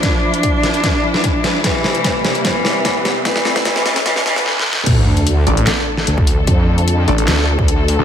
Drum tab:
CC |------------------------------------------------|------------------------------------------------|------------------------------------------------|x-----------------------------------------------|
HH |x--------x--x-----x--x--x-----------x-----x-----|x--------x--x-----x--x--x-----------x-----x-----|x--------x--x-----x--x--x-----------------------|x--------x--x-----o--x--x-----------x-----o-----|
CP |------------------------------------------------|------------------------------------------------|------------------------------------------------|------------------------x-----------------------|
SD |o-----------------o-----o--------o--------o-----|o-----o-----o-----o-----o-----o-----o-----o-----|o--o--o--o--o--o--o--o--o--o--o--o--o---o---o---|------------------------o--------o--------------|
BD |o-----------o-----------o-----------o-----------|o-----------o-----------o-----------o-----------|o-----------o-----------o-----------------------|o--------------------------------------o--------|

CC |------------------------------------------------|
HH |x--------x--x-----o--x--x-----------x-----o-----|
CP |------------------------x-----------------------|
SD |------------------------o-----------------------|
BD |o--------------------------------o--------------|